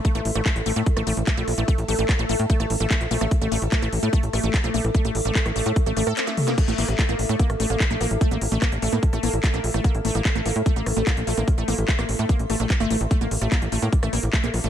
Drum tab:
CC |----------------|----------------|----------------|----------------|
HH |xxoxxxoxxxoxxxox|xxoxxxoxxxoxxxox|xxoxxxoxxxoxxxox|xxoxxxoxxxo-xxox|
CP |----x-------x---|----x-------x---|----x-------x---|----x-------x---|
SD |---r-----r----r-|----r----r-----r|----r-----r----r|-----r----r--o-o|
T2 |----------------|----------------|----------------|--------------o-|
BD |o---o---o---o---|o---o---o---o---|o---o---o---o---|o---o---o-------|

CC |x---------------|----------------|----------------|----------------|
HH |xxoxxxoxxxoxxxox|xxoxxxoxxxoxxxox|xxoxxxoxxxoxxxox|xxoxxxoxxxoxxxox|
CP |----x-------x---|----x-------x---|----x-------x---|----x-------x---|
SD |---r-----r----r-|----r----r-----r|----r-----r----r|-----r----r-----|
T2 |----------------|----------------|----------------|----------------|
BD |o---o---o---o---|o---o---o---o---|o---o---o---o---|o---o---o---o---|

CC |----------------|
HH |xxoxxxoxxxoxxxox|
CP |----x-------x---|
SD |---r-----r----r-|
T2 |----------------|
BD |o---o---o---o---|